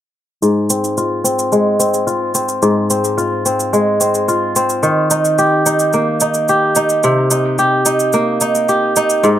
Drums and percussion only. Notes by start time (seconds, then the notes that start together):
0.43 shaker
0.70 shaker
0.84 shaker
0.98 shaker
1.25 shaker
1.39 shaker
1.52 shaker
1.80 shaker
1.94 shaker
2.08 shaker
2.35 shaker
2.49 shaker
2.62 shaker
2.90 shaker
3.04 shaker
3.18 shaker
3.46 shaker
3.60 shaker
3.74 shaker
4.01 shaker
4.14 shaker
4.29 shaker
4.56 shaker
4.69 shaker
4.83 shaker
5.11 shaker
5.25 shaker
5.38 shaker
5.66 shaker
5.79 shaker
5.93 shaker
6.20 shaker
6.34 shaker
6.48 shaker
6.75 shaker
6.89 shaker
7.03 shaker
7.31 shaker
7.58 shaker
7.86 shaker
8.00 shaker
8.13 shaker
8.41 shaker
8.55 shaker
8.69 shaker
8.96 shaker
9.10 shaker
9.24 shaker